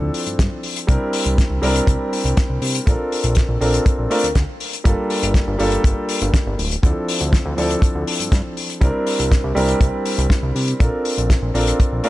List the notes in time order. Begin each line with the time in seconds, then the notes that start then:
Already playing: F3 C4 D4 E4 A4
0.02 D2
0.14 open hi-hat
0.26 G2, closed hi-hat
0.39 G2, kick, snare, closed hi-hat
0.63 open hi-hat
0.76 closed hi-hat
0.87 C2 G3 C4 D4 E4 A#4, kick, closed hi-hat
1.13 open hi-hat
1.26 C2, closed hi-hat
1.38 kick, snare, closed hi-hat
1.50 C2
1.62 C2 G3 C4 D4 E4 A#4, open hi-hat
1.76 closed hi-hat
1.87 C2, kick, closed hi-hat
2.13 open hi-hat
2.24 C2, closed hi-hat
2.37 kick, snare, closed hi-hat
2.49 C2
2.62 C3, open hi-hat
2.75 closed hi-hat
2.86 A#1 C4 D4 F4 A4 A#4, kick, closed hi-hat
3.12 open hi-hat
3.24 A#1, closed hi-hat
3.35 kick, snare, closed hi-hat
3.49 A#1
3.61 A#1 C4 D4 F4 A4 A#4, open hi-hat
3.74 closed hi-hat
3.86 kick, closed hi-hat
3.98 A#1
4.10 A3 C4 D4 F4 A#4, open hi-hat
4.23 D2, closed hi-hat
4.35 D2, kick, snare, closed hi-hat
4.60 open hi-hat
4.73 closed hi-hat
4.84 G1 G3 A#3 D4 F4 A4, kick, closed hi-hat
5.10 open hi-hat
5.23 G1, closed hi-hat
5.34 kick, snare, closed hi-hat
5.47 G1
5.59 G1 G3 A#3 D4 F4 A4, open hi-hat
5.72 closed hi-hat
5.84 G1, kick, closed hi-hat
6.09 open hi-hat
6.21 G1, closed hi-hat
6.34 kick, snare, closed hi-hat
6.47 G1
6.59 D1, open hi-hat
6.72 closed hi-hat
6.82 D2 F3 C4 D4 E4 A4, kick, closed hi-hat
7.08 open hi-hat
7.20 D2, closed hi-hat
7.33 kick, snare, closed hi-hat
7.45 D2
7.57 D2 F3 C4 D4 E4 A4, open hi-hat
7.71 closed hi-hat
7.82 kick, closed hi-hat
7.95 D2
8.07 open hi-hat
8.20 G2, closed hi-hat
8.32 G2, kick, snare, closed hi-hat
8.57 open hi-hat
8.70 closed hi-hat
8.81 C2 G3 C4 D4 E4 A#4, kick, closed hi-hat
9.07 open hi-hat
9.19 C2, closed hi-hat
9.32 kick, snare, closed hi-hat
9.44 C2
9.55 C2 G3 C4 D4 E4 A#4, open hi-hat
9.69 closed hi-hat
9.81 C2, kick, closed hi-hat
10.05 open hi-hat
10.18 C2, closed hi-hat
10.30 kick, snare, closed hi-hat
10.43 C2
10.55 C3, open hi-hat
10.68 closed hi-hat
10.79 A#1 C4 D4 F4 A4 A#4, kick, closed hi-hat
11.05 open hi-hat
11.18 A#1, closed hi-hat
11.30 kick, snare, closed hi-hat
11.42 A#1
11.54 A#1 C4 D4 F4 A4 A#4, open hi-hat
11.67 closed hi-hat
11.80 kick, closed hi-hat
11.92 A#1
12.03 A3 C4 D4 F4 A#4, open hi-hat